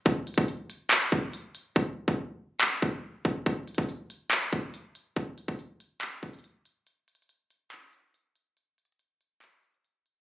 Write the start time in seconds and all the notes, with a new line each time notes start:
0.06 kick, closed hi-hat
0.27 closed hi-hat
0.34 kick, closed hi-hat
0.41 closed hi-hat
0.48 closed hi-hat
0.70 closed hi-hat
0.91 clap, closed hi-hat
1.12 kick, closed hi-hat
1.33 closed hi-hat
1.55 closed hi-hat
1.76 kick
2.08 kick
2.61 clap
2.82 kick
3.25 kick
3.46 kick, closed hi-hat
3.68 closed hi-hat
3.75 kick, closed hi-hat
3.82 closed hi-hat
3.89 closed hi-hat
4.10 closed hi-hat
4.31 clap, closed hi-hat
4.53 kick, closed hi-hat
4.74 closed hi-hat
4.95 closed hi-hat
5.16 kick, closed hi-hat
5.38 closed hi-hat
5.48 kick
5.59 closed hi-hat
5.80 closed hi-hat
6.02 clap, closed hi-hat
6.23 kick, closed hi-hat
6.28 closed hi-hat
6.34 closed hi-hat
6.39 closed hi-hat
6.44 closed hi-hat
6.65 closed hi-hat
6.87 closed hi-hat
7.08 closed hi-hat
7.15 closed hi-hat
7.22 closed hi-hat
7.29 closed hi-hat
7.50 closed hi-hat
7.72 clap, closed hi-hat
7.93 closed hi-hat
8.14 closed hi-hat
8.36 closed hi-hat
8.57 closed hi-hat
8.78 closed hi-hat
8.85 closed hi-hat
8.92 closed hi-hat
8.99 closed hi-hat
9.21 closed hi-hat
9.42 clap, closed hi-hat
9.63 closed hi-hat
9.74 closed hi-hat
9.85 closed hi-hat
10.06 closed hi-hat